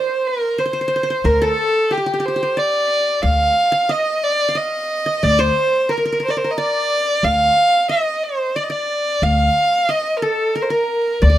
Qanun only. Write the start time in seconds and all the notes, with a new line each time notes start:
Already playing: A#4 C5 D5
0.58 C5
0.66 C5
0.73 C5
0.81 C5
0.88 C5
0.96 C5
1.03 C5
1.10 C5
1.25 A#4
1.42 A4
1.91 G4
1.97 G4
2.06 G4
2.14 G4
2.20 G4
2.28 G4
2.36 G4
2.43 G4
2.57 D5
3.23 F5
3.72 F5
3.89 D#5
4.49 F5
4.55 D#5
5.06 D#5
5.23 D5
5.39 C5
5.89 A#4
5.98 A#4
6.05 A#4
6.12 A#4
6.20 A#4
6.28 A#4
6.37 A#4
6.44 A#4
6.58 D5
7.24 F5
7.89 D#5
8.56 D5
8.70 D5
9.23 F5
9.89 D#5
10.22 A4
10.56 A#4
10.70 A#4
11.22 D5
11.30 D5